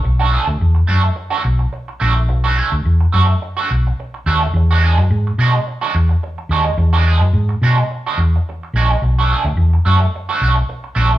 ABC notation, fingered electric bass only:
X:1
M:4/4
L:1/16
Q:1/4=107
K:Bdor
V:1 name="Fingered electric bass" clef=bass
B,,,3 D,, E,,2 F,,2 z2 B,,,2 z2 ^A,,,2 | B,,,3 D,, E,,2 F,,2 z2 B,,,2 z2 ^D,,2 | E,,3 F,, G,,2 B,,2 z2 E,,2 z2 ^D,,2 | E,,3 F,, G,,2 B,,2 z2 E,,2 z2 ^A,,,2 |
B,,,3 D,, E,,2 F,,2 z2 B,,,2 z2 ^A,,,2 |]